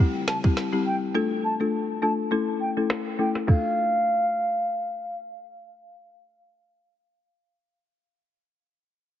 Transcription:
0.00 marimba G3 C4 E4 G4
0.28 flute A5, finger snap, snare
0.44 marimba G3 C4 E4 G4, kick
0.57 snare
0.73 marimba G3 C4 E4 G4
0.86 flute G5
1.15 marimba A3 D4 F4 A4
1.44 flute A5
1.60 marimba A3 D4 F4 A4
2.02 marimba A3 D4 F4 A4, flute A5
2.31 marimba A3 C#4 E4 A4
2.61 flute G5
2.77 marimba A3 C#4 E4 A4
2.90 finger snap, snare
3.19 marimba A3 C#4 E4 A4, flute G5
3.35 snare
3.47 marimba A3 D4 F4 A4, flute F5, kick, crash

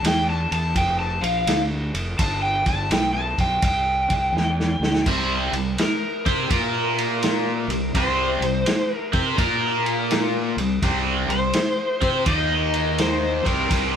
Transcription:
0.03 fingered electric bass E2, snare, ride
0.07 electric slide guitar G5
0.30 electric slide guitar A5
0.51 fingered electric bass E2, electric slide guitar A5, ride
0.75 fingered electric bass F1, electric slide guitar G5, kick, ride
0.99 electric slide guitar A5
1.21 fingered electric bass A#1, electric slide guitar F5, ride
1.47 fingered electric bass D2, snare, ride
1.94 fingered electric bass F1, ride
2.19 fingered electric bass G1, electric slide guitar A5, kick, ride
2.42 electric slide guitar G5
2.66 fingered electric bass G1, electric slide guitar A5, kick, ride
2.90 fingered electric bass B1, electric slide guitar G5, snare, ride
3.13 electric slide guitar A5
3.38 fingered electric bass B1, electric slide guitar G5, kick, ride
3.62 fingered electric bass C2, electric slide guitar G5, kick, ride
4.10 fingered electric bass C2, kick, ride
4.33 fingered electric bass E2
4.37 snare
4.60 snare
4.80 fingered electric bass D2, snare
4.95 snare
5.06 fingered electric bass C2, overdriven electric guitar C3 G3 C4, kick, crash
5.53 fingered electric bass C2, overdriven electric guitar C3 G3, ride
5.78 electric slide guitar A#4, snare, ride
6.26 fingered electric bass C3, overdriven electric guitar C4 G4 C5, kick, ride
6.50 fingered electric bass A#2, overdriven electric guitar A#3 F4 A#4, kick, ride
6.98 ride
7.23 snare, ride
7.68 fingered electric bass C2, overdriven electric guitar C3 G3, ride
7.95 fingered electric bass C2, overdriven electric guitar C3 G3 C4, electric slide guitar C5, kick, ride
8.41 fingered electric bass C2, overdriven electric guitar C3 G3, ride
8.66 snare, ride
8.95 electric slide guitar A#4
9.13 fingered electric bass C3, overdriven electric guitar C4 G4 C5, kick, ride
9.38 fingered electric bass A#2, overdriven electric guitar A#3 F4 A#4, electric slide guitar A#4, kick, ride
9.86 ride
10.11 snare, ride
10.57 fingered electric bass C2, overdriven electric guitar C3 G3, ride
10.82 fingered electric bass C2, overdriven electric guitar C3 G3 C4, kick, ride
11.28 fingered electric bass C2, overdriven electric guitar C3, electric slide guitar C5, ride
11.33 overdriven electric guitar G3
11.53 snare, ride
12.01 fingered electric bass C3, overdriven electric guitar C4 G4 C5, kick, ride
12.26 fingered electric bass D#2, overdriven electric guitar D#3 A#3 D#4, electric slide guitar D#5, kick, ride
12.74 ride
12.98 electric slide guitar C5, snare, ride
13.44 fingered electric bass C2, overdriven electric guitar C3 G3 C4, electric slide guitar A#4, kick, ride
13.69 fingered electric bass C2, overdriven electric guitar C3 G3 C4, kick, ride

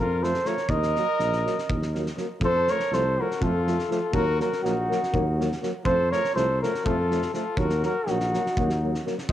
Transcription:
0.00 tuba F2, trumpet F4, flugelhorn A#4
0.23 trombone F3, euphonium A3, trumpet A4, flugelhorn C5, snare
0.34 snare
0.45 trombone F3, euphonium A3, trumpet A#4, flugelhorn C#5, snare
0.57 snare
0.69 tuba D#2, trumpet A#4, flugelhorn D#5, kick
0.83 snare
0.96 trombone F#3, euphonium A#3, snare
1.19 tuba A#1, snare
1.33 snare
1.45 trombone F#3, euphonium A#3, snare
1.58 snare
1.70 tuba D#2, kick
1.82 snare
1.94 trombone F#3, euphonium A#3, snare
2.06 snare
2.16 trombone F#3, euphonium A#3, snare
2.40 tuba F2, trombone F3, euphonium A3, trumpet A4, kick
2.45 flugelhorn C5
2.67 trombone F3, euphonium A3, trumpet A#4, flugelhorn C#5, snare
2.80 snare
2.91 tuba C2, trombone F3, euphonium A3, trumpet A4, flugelhorn C5, snare
3.18 trombone F3, euphonium A3, trumpet F#4, flugelhorn A#4
3.31 snare
3.41 tuba F2, trombone F3, euphonium A3, trumpet F4, flugelhorn A4, kick
3.67 trombone F3, euphonium A3, snare
3.79 snare
3.89 trombone F3, euphonium A3, trumpet F4, flugelhorn A4, snare
4.12 tuba D#2, trombone F#3, euphonium A#3, trumpet F#4, flugelhorn A#4, kick
4.39 trombone F#3, euphonium A#3, trumpet F#4, flugelhorn A#4, snare
4.53 snare
4.63 tuba A#1, trombone F#3, euphonium A#3, trumpet D#4, flugelhorn F#4, snare
4.89 trombone F#3, euphonium A#3, snare
5.03 snare
5.13 tuba D#2, trombone F#3, euphonium A#3, kick
5.38 trombone F#3, euphonium A#3, snare
5.52 snare
5.61 trombone F#3, euphonium A#3, snare
5.85 tuba F2, trombone F3, euphonium A3, trumpet A4, flugelhorn C5, kick
6.11 trombone F3, euphonium A3, trumpet A#4, flugelhorn C#5, snare
6.25 snare
6.34 tuba C2, trombone F3, euphonium A3, trumpet A4, flugelhorn C5, snare
6.61 trombone F3, euphonium A3, trumpet F#4, flugelhorn A#4, snare
6.75 snare
6.84 tuba F2, trombone F3, euphonium A3, trumpet F4, flugelhorn A4, kick
7.09 trombone F3, euphonium A3, snare
7.22 snare
7.32 trombone F3, euphonium A3, trumpet F4, flugelhorn A4, snare
7.56 tuba D#2, trombone F#3, euphonium A#3, trumpet F#4, flugelhorn A#4, kick
7.70 snare
7.83 trombone F#3, euphonium A#3, trumpet F#4, flugelhorn A#4, snare
8.07 tuba A#1, trombone F#3, euphonium A#3, trumpet D#4, flugelhorn F#4, snare
8.20 snare
8.33 trombone F#3, euphonium A#3, snare
8.46 snare
8.57 tuba D#2, trombone F#3, euphonium A#3, kick
8.70 snare
8.82 trombone F#3, euphonium A#3
8.95 snare
9.05 trombone F#3, euphonium A#3, snare
9.18 snare
9.28 trombone F3, trumpet C5, flugelhorn D#5, kick

